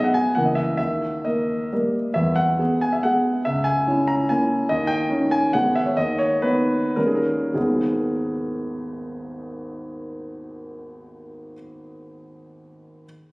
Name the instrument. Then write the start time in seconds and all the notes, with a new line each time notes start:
grand piano
Already playing: B3 G#4
0.04 F#5
0.14 G#5
0.35 C#2 E3 A#3 A#4 F#5
0.45 D#5
0.55 E5
0.77 D#2 E5
1.25 A#3 A#4 D#5
1.73 G3 A#3 A#4
2.14 E2 E5
2.36 F#5
2.59 B3 G#4
2.81 G#5
2.93 E5
3.03 G#3 B3 G#4 F#5
3.45 C#2 E5
3.64 G#5
3.88 C#4 E4
4.08 A#5
4.29 A#3 C#4 E4 G#5
4.69 D#2 D#5
4.87 G5
5.10 C#4 D#4
5.31 G#5
5.53 G#1 G#3 B3 D#4 F#5
5.75 E5
5.86 C#5
5.97 D#2 D#5
6.18 C#5
6.42 B3 D#4 B4
6.96 D#2 G3 C#4 D#4 A#4
7.07 G#4
7.15 A#4
7.54 G#1 D#2 G#3 B3 D#4 G#4